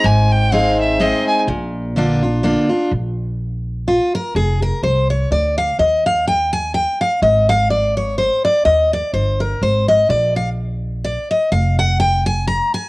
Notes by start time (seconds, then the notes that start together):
0.04 G#1 G#2 G#5
0.32 G5
0.52 G#3 C4 D#4 G#4 F5
0.80 E5
1.00 G#3 C4 D#4 G#4 D#5
1.27 G#5
1.47 A#1 A#2
1.96 D3 A#3 D4 F4
2.22 D4 F4
2.43 D3 A#3 D4 F4
2.69 D4 F4
2.91 A#1
3.88 F4
4.15 A#4
4.35 F1 G#4
4.62 A#4
4.83 C2 C5
5.10 C#5
5.31 D2 D5
5.58 F5
5.79 D#2 D#5
6.06 F5
6.27 G5
6.53 G#5
6.74 G5
7.01 F5
7.22 G#1 D#5
7.49 F5
7.71 D5
7.97 C#5
8.18 C5
8.45 D5
8.65 D#2 D#5
8.93 D5
9.13 G1 C5
9.40 A#4
9.61 G#1 C5
9.88 D#5
10.09 A#1 D5
10.36 F5
11.04 D5
11.31 D#5
11.52 F1 F5
11.79 F#5
12.00 G5
12.26 G#5
12.47 A#5
12.74 G#5